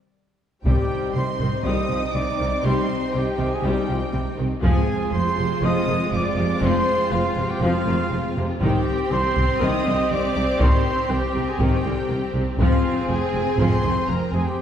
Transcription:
0.64 C2 C3 D#3 G3 C4 D#4 G4 G5, taiko
1.14 C2 C3 G3 C5 C6
1.40 C2 C3 D#3, taiko
1.64 C2 C3 D#3 G3 C4 D#5 D#6
1.89 C2 C3 F3
2.13 C2 C3 G3 D5 D6
2.40 C2 C3 D#3
2.62 C2 C3 D#3 G3 C4 C5 C6
3.13 C2 C3 G3 G4 G5
3.38 C2 C3 D#3
3.50 G#4 G#5
3.63 C2 C3 D#3 G3 C4 G4 G5
3.88 C2 C3 F3
4.13 C2 C3 G3
4.37 C2 C3 D#3
4.62 F1 F2 F3 G#3 C4 F4 G#4 G#5, taiko
5.13 F1 F2 F3 C5 C6
5.37 F1 F2 C3
5.61 F1 F2 F3 C4 D#5 D#6
5.87 F1 F2 D#3
6.11 F1 F2 F3 D5 D6
6.36 F1 F2 C3
6.61 F1 F2 F3 C4 C5 C6
7.11 F1 F2 F3 F4 F5
7.37 F1 F2 C3
7.49 G4 G5
7.61 F1 F2 F3 C4 F4 F5
7.86 F1 F2 D#3
8.11 F1 F2 F3
8.36 F1 F2 C3
8.61 C2 D#3 C4 G4 G5, taiko
9.10 C2 D#3 C5 C6
9.36 C2 C3, taiko
9.60 C2 D#3 C4 D#5 D#6
9.86 C2 D3
10.10 C2 D#3 D5 D6
10.36 C2 C3
10.60 C2 D#3 C4 C5 C6, taiko
11.09 C2 D#3 G4 G5
11.35 C2 C3
11.47 G#4 G#5
11.59 C2 D#3 C4 G4 G5, taiko
11.84 C2 D3
12.08 C2 D#3
12.34 C2 C3
12.58 F1 F2 F3 G#3 C4 F4 G#4 F5, taiko
13.08 F1 F2 F3 G#4 G#5
13.33 F1 F2 C3
13.57 F1 F2 F3 G#3 C4 C5 C6, taiko
13.83 F1 F2 D#3
14.07 F1 F2 F3 A#4 A#5
14.32 F1 F2 C3 G#4 G#5
14.45 G4 G5

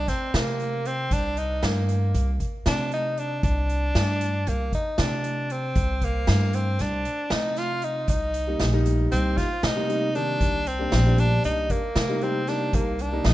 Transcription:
0.08 C4, kick, snare, closed hi-hat
0.34 C3 A#3, snare, closed hi-hat
0.60 closed hi-hat
0.85 C4, closed hi-hat
1.11 C2 D4, kick, closed hi-hat
1.37 D#4, closed hi-hat
1.63 G2 A#3, snare, closed hi-hat
1.89 closed hi-hat
2.14 C2, closed hi-hat
2.40 kick, closed hi-hat
2.66 C3 D4, snare, closed hi-hat
2.92 D#4, closed hi-hat
3.17 D4, closed hi-hat
3.43 C2 D4, kick, closed hi-hat
3.69 closed hi-hat
3.95 G2, snare, closed hi-hat
4.21 closed hi-hat
4.47 C2 A#3, closed hi-hat
4.73 D#4, kick, closed hi-hat
4.98 C3 D4, snare, closed hi-hat
5.24 closed hi-hat
5.50 C4, closed hi-hat
5.75 C2, kick, closed hi-hat
6.01 A#3, kick, closed hi-hat
6.27 G2, snare, closed hi-hat
6.53 C4, closed hi-hat
6.79 C2 D4, snare, closed hi-hat
7.05 closed hi-hat
7.30 C3 D#4, snare, closed hi-hat
7.56 F4, snare, closed hi-hat
7.82 D#4, closed hi-hat
8.08 C2 D#4, kick, closed hi-hat
8.34 closed hi-hat
8.47 G3 A#3 D#4
8.60 A#1, snare, closed hi-hat
8.72 G3 A#3 D#4
8.86 closed hi-hat
9.12 C2 C4, closed hi-hat
9.38 F4, kick, snare, closed hi-hat
9.63 C3 D#4, snare, closed hi-hat
9.76 G3 A#3 D#4
9.88 G3 A#3 D#4, closed hi-hat
10.15 D#3 G3 A#3 D4, closed hi-hat
10.41 C2, kick, closed hi-hat
10.66 C4, closed hi-hat
10.79 G3 A#3 D4
10.92 A#1, snare, closed hi-hat
11.06 G3 A#3 D4
11.18 D4, closed hi-hat
11.44 C2 D#4, closed hi-hat
11.70 A#3, kick, closed hi-hat
11.96 C3, snare, closed hi-hat
12.09 G3 A#3 D#4
12.21 G3 A#3 C4 D#4, closed hi-hat
12.47 G3 A#3 D4 D#4, snare, closed hi-hat
12.73 C2 A#3, kick, closed hi-hat
12.99 D4, closed hi-hat
13.12 G3 A#3 D#4
13.25 A#1 D#4, snare, closed hi-hat

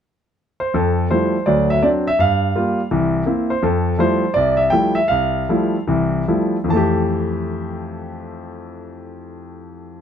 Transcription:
0.60 C5
0.74 F2 A4
1.10 F3 G3 A3 E4 C5
1.46 D2 F#3 D5
1.70 E5
1.82 F#3 C4 D4 D5
2.07 E5
2.19 G2 F5
2.55 G3 A#3 F4
2.91 C2 E3
3.26 A#3 C4 E4
3.50 C5
3.63 F2 A4
3.98 F3 G3 A3 E4 C5
4.34 C2 D5
4.57 E5
4.70 F3 G3 A3 E4 G5
4.95 E5
5.08 C2 F5
5.49 F3 G3 A3 E4
5.87 C2 E3
6.28 F3 G3 A3 E4
6.64 F2
6.68 E3 A5
6.73 A3 G4

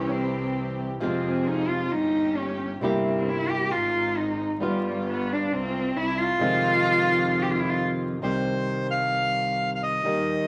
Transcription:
Already playing: C2 C3 E3 G3 C4 C#4 E4 G4
0.11 C4
1.00 F2 C3 F3 G#3 C4 F4 G#4
1.47 D#4
1.68 F4
1.91 G1 A#3 C#4 D#4 G4
2.37 C#4
2.81 G1 C3 G3 A#3 C4 E4 G4
3.29 E4
3.49 G4
3.71 G#1 G#3 C4 D#4 F4
4.17 D#4
4.60 G1 G3 B3 F4
4.64 G3
5.09 B3
5.32 D4
5.51 C2 G#3 C4 F4
5.96 C2 G3 C4 E4
6.18 F4
6.39 F2 C3 D#3 G#3 C4 D#4 F4
7.42 G4
7.51 F4
7.59 E4
7.69 F4
8.22 C2 C3 D#3 G3 C4 G4 C5
8.91 F5
9.75 F5
9.83 D#5
10.04 D#2 D#3 G3 A#3 D#4 G4

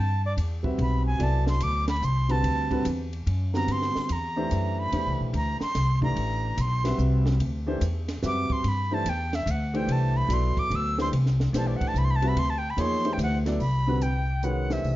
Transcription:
Already playing: G2
0.00 A5
0.25 D5
0.37 E2, hi-hat pedal, ride
0.63 G3 C4 F#4 B4 E5, kick
0.78 B1 B5, ride
1.06 G#5
1.18 C2 F#3 B3 E4 A4 D5, ride
1.23 A5
1.47 C6, snare
1.60 D2 D6, hi-hat pedal, ride
1.88 B5, snare, ride
2.02 C2 C6, hi-hat pedal
2.29 D3 G3 C4 F#4 B4 A5, ride
2.43 D2, ride
2.70 D3 G3 C4 F#4 B4, kick, ride
2.85 E2, hi-hat pedal, ride
3.13 ride
3.27 F#2, ride
3.54 D3 G3 B3 C4 F#4 A#5, snare
3.67 G2, ride
3.72 C6
3.82 snare
3.95 muted upright bass stroke, snare
4.09 E2 A#5, hi-hat pedal, ride
4.36 E3 A3 D4 G4 C5
4.51 F#2, hi-hat pedal, ride
4.79 B5
4.92 E2 E3 A3 D4 G4 C5, ride
5.06 C2
5.20 B1
5.33 D2 A#5, ride
5.61 C6, muted upright bass stroke, snare
5.75 C2, snare, hi-hat pedal, ride
6.01 E3 A3 D4 G4 D5 A#5, kick
6.15 A1, ride
6.57 B1 C6, hi-hat pedal, ride
6.84 G3 C4 F#4 B4 E5, snare, ride
6.98 C2, hi-hat pedal
7.26 snare
7.40 D2, ride
7.66 E3 A3 D4 G4 C5
7.81 E2, hi-hat pedal, ride
8.08 snare, ride
8.22 F#2 G3 C4 F#4 B4 E5, snare, hi-hat pedal
8.26 D6
8.50 C6, muted upright bass stroke, kick
8.64 G2, ride
8.68 B5
8.91 E3 A3 D4 G4 C5 A5
9.05 E2 G5, hi-hat pedal, ride
9.33 E5, snare, ride
9.46 D2, hi-hat pedal, ride
9.51 F#5
9.73 E3 A3 D4 G4 C5 G5, ride
9.87 C2, ride
9.92 A5
10.17 B5
10.29 B1 F#3 B3 E4 A4 D5, hi-hat pedal, ride
10.33 C6
10.57 D6, muted upright bass stroke, kick, ride
10.70 D2, ride
10.75 E6
10.98 E3 A3 D4 G4 C5 C6, snare
11.12 C2, ride
11.26 snare
11.40 snare
11.53 B1 E3 A3 D4 G4 C5, snare, hi-hat pedal, ride
11.57 A5
11.67 D5
11.76 F#5
11.81 muted upright bass stroke, kick, ride
11.88 A5
11.94 C2 B5, hi-hat pedal
12.04 C6
12.11 B5
12.16 A5
12.22 G3 C4 F#4 B4 E5, ride
12.28 B5
12.35 D2 C6, ride
12.50 A5
12.58 G5
12.70 B5
12.77 E2 F3 A#3 D#4 G#4 C#5 C6, hi-hat pedal, ride
13.04 E3 A3 D4 G4 C5, ride
13.13 G5
13.18 D2, hi-hat pedal, ride
13.23 F#5
13.46 F#3 B3 E4 A4 D5, snare, ride
13.59 C2 B5, open hi-hat
13.87 D3 G3 C4 F#4 B4
14.01 G5, closed hi-hat
14.43 D#3 G#3 C#4 F#4 B4 F#5, closed hi-hat
14.70 E3 A3 D4 G4 C5 E5, snare, open hi-hat
14.84 C2, open hi-hat

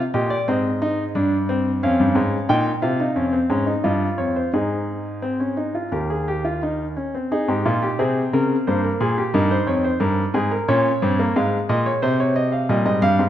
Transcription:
0.14 A#2 G4 D#5
0.30 D5
0.48 G#2 C4 D#5
0.82 D#4
1.15 G2 D4
1.49 C4
1.83 F2 C#4 F5
2.00 G2
2.15 G#2
2.49 A#2 D#4 G5
2.82 C3 F4 F5
3.00 D#4
3.16 F2 C#4
3.33 C4
3.50 G#2 C#4
3.67 D#4
3.84 G2 F4 D#5
4.18 F2 C#5
4.36 C5
4.53 G#2 D#4 G#4
5.22 C4
5.40 C#4
5.57 D#4
5.75 F4
5.92 D#2 G4 A#4
6.10 G#4
6.28 G4
6.45 F4
6.63 D#4
6.97 C#4
7.15 C4
7.32 D#4 G#4
7.48 G#2 G4
7.65 A#2 F4
7.82 G4
7.99 C3 C4 G#4
8.33 C#3 A#4
8.67 G2 A#3 C5
8.84 A#4
9.00 A#2 G#4
9.18 G4
9.34 G2 D#4 A#4
9.51 C5
9.67 F2 C#5
9.84 C5
10.00 G2 A#4
10.34 G#2 G#4
10.51 A#4
10.68 A#2 C#4 C#5
11.02 G2 C4
11.19 A#3
11.36 G#2 G#3 F5
11.69 A#2 D#5
11.86 C#5
12.02 C3 C5
12.20 C#5
12.36 D#5
12.52 F5
12.69 A#2 G3 D#5
12.85 G#2 D#5
13.02 G2 F5
13.19 G#2

